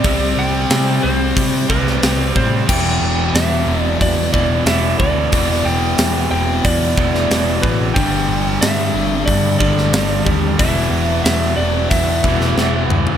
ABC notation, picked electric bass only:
X:1
M:4/4
L:1/8
Q:1/4=91
K:Em
V:1 name="Picked electric bass" clef=bass
C,, C,, C, C,, C, C,, C,, A,, | E,,, E,,, E,, E,,, E,, E,,, E,,, D,, | E,,, E,,, E,, E,,, E,, E,,, E,,, A,,, | G,,, G,,, G,, G,,, G,, G,,, G,,, ^D,, |
E,,, E,,, E,, E,,, E,, E,,, E,,, D,, |]